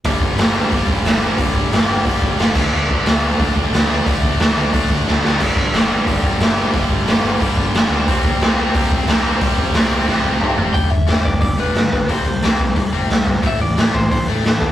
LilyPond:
<<
  \new Staff \with { instrumentName = "Lead electric guitar" } { \time 4/4 \key c \lydian \tempo 4 = 179 r1 | r1 | r1 | r1 |
r1 | r1 | r1 | r1 |
g''8 e''8.~ e''32 c''32 d''8 d''8 b'4 b'8 | c''4 r2. | e''8 d''4 c''8 c''8 a'4 a'8 | }
  \new Staff \with { instrumentName = "Distorted electric guitar" } { \clef bass \time 4/4 \key c \lydian <g, d g>4 <g, d g>8 <g, d g>8 <g, d g>4 <g, d g>8 <g, d g>8 | <g, d g>4 <g, d g>8 <g, d g>8 <g, d g>4 <g, d g>8 <d a d'>8 | <d a d'>4 <d a d'>8 <d a d'>8 <d a d'>4 <d a d'>8 <d a d'>8 | <d a d'>4 <d a d'>8 <d a d'>8 <d a d'>4 <d a d'>8 <d a d'>8 |
<g, d g>4 <g, d g>8 <g, d g>8 <g, d g>4 <g, d g>8 <g, d g>8 | <g, d g>4 <g, d g>8 <g, d g>8 <g, d g>4 <g, d g>8 <g, d g>8 | <c g c'>4 <c g c'>8 <c g c'>8 <c g c'>4 <c g c'>8 <c g c'>8 | <c g c'>4 <c g c'>8 <c g c'>8 <c g c'>4 <c g c'>8 <c g c'>8 |
r1 | r1 | r1 | }
  \new Staff \with { instrumentName = "Distorted electric guitar" } { \clef bass \time 4/4 \key c \lydian <g, d g>4 <g, d g>8 <g, d g>8 <g, d g>4 <g, d g>8 <g, d g>8 | <g, d g>4 <g, d g>8 <g, d g>8 <g, d g>4 <g, d g>8 <d a d'>8 | <d a d'>4 <d a d'>8 <d a d'>8 <d a d'>4 <d a d'>8 <d a d'>8 | <d a d'>4 <d a d'>8 <d a d'>8 <d a d'>4 <d a d'>8 <d a d'>8 |
<g, d g>4 <g, d g>8 <g, d g>8 <g, d g>4 <g, d g>8 <g, d g>8 | <g, d g>4 <g, d g>8 <g, d g>8 <g, d g>4 <g, d g>8 <g, d g>8 | <c g c'>4 <c g c'>8 <c g c'>8 <c g c'>4 <c g c'>8 <c g c'>8 | <c g c'>4 <c g c'>8 <c g c'>8 <c g c'>4 <c g c'>8 <c g c'>8 |
<g, d g>8 <g, d>8 <g, d g>8 <g, d>8 <g, d>8 <g, d g>8 <g, d>8 <g, d>8 | <c g c'>8 <c g>8 <c g c'>8 <c g>8 <c g>8 <c g c'>8 <c g>8 <c g>8 | <a, e a>8 <a, e>8 <a, e a>8 <a, e>8 <a, e>8 <a, e a>8 <a, e>8 <a, e>8 | }
  \new Staff \with { instrumentName = "Picked electric bass" } { \clef bass \time 4/4 \key c \lydian g,,4 g,,4 g,,4 g,,4 | g,,8 g,,8 g,,8 g,,8 g,,8 g,,8 g,,8 d,8 | d,4 d,4 d,4 d,4 | d,8 d,8 d,8 d,8 d,8 d,8 d,8 d,8 |
g,,4 g,,4 g,,4 g,,4 | g,,8 g,,8 g,,8 g,,8 g,,8 g,,8 g,,8 d,8 | c,4 c,4 c,4 c,4 | c,8 c,8 c,8 c,8 c,8 c,8 c,8 fis,,8 |
g,,8 g,,8 g,,8 g,,8 g,,8 g,,8 g,8 g,,8 | c,8 c,8 c,8 c,8 c,8 g,,8 c,8 g,8 | a,,8 a,,8 a,,8 a,,8 a,,8 a,,8 a,8 ees,8 | }
  \new DrumStaff \with { instrumentName = "Drums" } \drummode { \time 4/4 <hho bd>8 bd8 <hho sn>4 <hho bd>8 bd8 <hho sn>4 | <hho bd>8 bd8 <hho sn>4 <hho bd>8 bd8 <hho sn>8 <cymc bd>8 | r8 bd8 <hho sn>4 <hho bd>8 bd8 <hho sn>4 | <hho bd>8 bd8 <hho sn>4 <hho bd>8 bd8 sn8 sn8 |
<cymc hho bd>8 bd8 <hho sn>4 <hho bd>8 bd8 <hho sn>4 | <hho bd>8 bd8 <hho sn>4 <hho bd>8 bd8 <hho sn>4 | <hho bd>8 bd8 <hho sn>4 <hho bd>8 bd8 <hho sn>4 | <hho bd>8 bd8 <hho sn>4 <bd sn>4 toml8 tomfh8 |
<hho bd>4 <hho sn>8 bd8 <hho bd>4 <hho sn>8 bd8 | <hho bd>4 <hho sn>8 bd8 <hho bd>4 <hho sn>8 bd8 | <hho bd>4 <hho sn>8 bd8 <hho bd>4 <hho sn>8 bd8 | }
>>